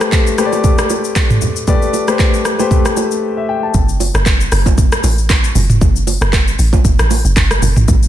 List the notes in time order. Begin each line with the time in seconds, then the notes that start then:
Already playing: A3 G4 B4 C5
0.01 cross-stick, shaker
0.12 kick, clap, high bongo, shaker
0.27 shaker
0.38 A3 G4 B4 C5, cross-stick, shaker
0.45 D5
0.52 low bongo, shaker
0.64 kick, low conga, shaker
0.78 cross-stick, high bongo, shaker
0.90 low bongo, shaker
1.04 shaker
1.16 kick, clap, high bongo, shaker
1.30 mid tom, shaker
1.41 low conga, shaker
1.56 shaker
1.67 A3 G4 B4 D5, kick, low conga, shaker
1.82 shaker
1.93 low bongo, shaker
2.08 A3 G4 B4 C5, cross-stick, shaker
2.19 kick, clap, high bongo, shaker
2.34 shaker
2.45 cross-stick, shaker
2.59 A3 G4 B4 C5, low bongo, shaker
2.71 kick, low conga, shaker
2.85 cross-stick, high bongo, shaker
2.97 low bongo, shaker
3.11 shaker
3.37 E5
3.49 G5
3.63 A5
3.74 F#1, kick, low conga, shaker
3.89 shaker
4.00 open hi-hat, low bongo, shaker
4.14 F#1, cross-stick, shaker
4.26 kick, clap, high bongo, shaker
4.41 shaker
4.52 F#1, cross-stick, open hi-hat, shaker
4.66 kick, low bongo, shaker
4.78 kick, low conga, shaker
4.92 cross-stick, shaker
5.04 A1, open hi-hat, low bongo, shaker
5.18 shaker
5.30 kick, clap, high bongo, shaker
5.44 shaker
5.55 F#1, open hi-hat, low conga, shaker
5.70 mid tom, shaker
5.81 F#1, kick, low conga, shaker
5.96 shaker
6.07 open hi-hat, low bongo, shaker
6.21 F#1, cross-stick, shaker
6.33 kick, clap, high bongo, shaker
6.48 shaker
6.59 A1, open hi-hat, shaker
6.73 kick, low bongo, shaker
6.85 F#1, kick, low conga, shaker
6.99 A1, cross-stick, shaker
7.11 open hi-hat, low bongo, shaker
7.25 F#1, shaker
7.36 F#1, kick, clap, high bongo, shaker
7.51 cross-stick, shaker
7.62 F#1, open hi-hat, low conga, shaker
7.76 A1, mid tom, shaker
7.88 A1, kick, low conga, shaker
8.03 shaker